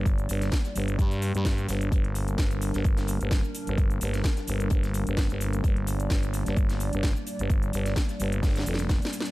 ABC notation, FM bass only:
X:1
M:4/4
L:1/16
Q:"Swing 16ths" 1/4=129
K:Gm
V:1 name="FM bass" clef=bass
G,,,2 G,,,2 z2 G,,,2 G,,3 G,,3 G,,,2 | z6 z G,,,4 G,,,2 z2 G,,,- | G,,,2 G,,,2 z2 G,,,2 G,,,3 G,,,2 G,,,3 | z4 G,,,3 G,,,4 G,,,2 z2 G,,,- |
G,,,2 G,,,2 z2 G,,,2 z2 F,,,3 z3 |]